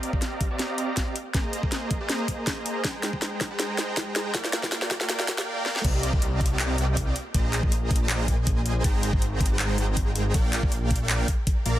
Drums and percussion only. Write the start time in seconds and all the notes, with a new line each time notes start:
0.03 closed hi-hat
0.13 kick
0.22 snare, closed hi-hat
0.41 kick, closed hi-hat
0.59 snare, closed hi-hat
0.78 closed hi-hat
0.97 kick, snare, closed hi-hat
1.16 closed hi-hat
1.34 kick, snare, closed hi-hat
1.53 closed hi-hat
1.63 kick
1.72 snare, closed hi-hat
1.91 kick, closed hi-hat
2.09 snare, closed hi-hat
2.28 kick, closed hi-hat
2.47 kick, snare, closed hi-hat
2.66 closed hi-hat
2.84 kick, snare, closed hi-hat
3.03 snare, closed hi-hat
3.13 kick
3.22 snare, closed hi-hat
3.41 kick, snare, closed hi-hat
3.60 snare, closed hi-hat
3.78 snare, closed hi-hat
3.97 kick, snare, closed hi-hat
4.16 snare, closed hi-hat
4.34 kick, snare, closed hi-hat
4.44 snare
4.53 snare, closed hi-hat
4.63 kick, snare
4.72 snare, closed hi-hat
4.82 snare
4.91 kick, snare, closed hi-hat
5.01 snare
5.09 snare, closed hi-hat
5.19 snare
5.28 kick, snare, closed hi-hat
5.38 snare
5.66 snare
5.76 snare
5.85 kick, closed hi-hat, crash
6.03 closed hi-hat
6.13 kick
6.22 closed hi-hat
6.41 kick, closed hi-hat
6.46 closed hi-hat
6.59 clap, closed hi-hat
6.78 closed hi-hat
6.97 kick, closed hi-hat
7.16 closed hi-hat
7.34 kick, closed hi-hat
7.53 clap, closed hi-hat
7.63 kick
7.72 closed hi-hat
7.91 kick, closed hi-hat
7.96 closed hi-hat
8.09 clap, closed hi-hat
8.28 kick, closed hi-hat
8.47 kick, closed hi-hat
8.66 closed hi-hat
8.84 kick, closed hi-hat
9.03 closed hi-hat
9.13 kick
9.22 closed hi-hat
9.41 kick, closed hi-hat
9.46 closed hi-hat
9.59 clap, closed hi-hat
9.78 closed hi-hat
9.97 kick, closed hi-hat
10.16 closed hi-hat
10.34 kick, closed hi-hat
10.53 clap, closed hi-hat
10.63 kick
10.72 closed hi-hat
10.91 kick, closed hi-hat
10.96 closed hi-hat
11.09 clap, closed hi-hat
11.28 kick, closed hi-hat
11.47 kick, closed hi-hat
11.66 closed hi-hat